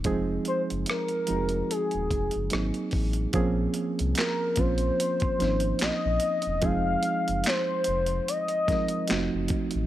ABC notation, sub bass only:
X:1
M:4/4
L:1/16
Q:"Swing 16ths" 1/4=73
K:Bbm
V:1 name="Sub bass" clef=bass
F,,,2 z G,,, z2 F,,,2 z E,,, F,,, G,,, A,,, z =A,,,2 | B,,,2 z C,, z2 B,,,2 z A,,, A,,,2 B,,, B,,, z =E,,, | F,,,2 z G,,, z2 F,,,2 z4 F,,, G,,, z =A,,, |]